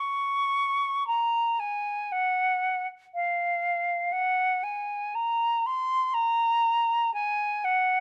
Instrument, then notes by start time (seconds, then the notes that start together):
flute
0.00 C#6
1.07 A#5
1.59 G#5
2.12 F#5
3.14 F5
4.12 F#5
4.63 G#5
5.14 A#5
5.66 C6
6.13 A#5
7.13 G#5
7.64 F#5